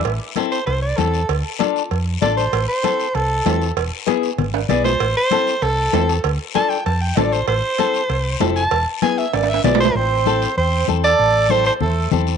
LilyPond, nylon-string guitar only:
\new Staff \with { instrumentName = "Nylon-string guitar" } { \time 4/4 \key a \minor \tempo 4 = 194 r4 <c' e' a'>8 r4. <c' e' a'>8 r8 | r4 <d' f' a'>8 r4. <d' f' a'>8 r8 | r4 <c' e' a'>8 r4. <c' e' a'>8 r8 | r4 <b e' gis'>8 r4. <b e' gis'>8 r8 |
r4 <c' e' a'>8 r4. <c' e' a'>8 r8 | r4 <d' f' a'>8 r4. <d' f' a'>8 r8 | r4 <c' e' a'>8 r4. <c' e' a'>8 r8 | r4 <b e' gis'>8 r4. <b e' gis'>8 r8 |
r4 <c' e' a'>8 r4. <c' e' a'>8 r8 | r4 <c' e' a'>8 r4. <c' e' a'>8 r8 | }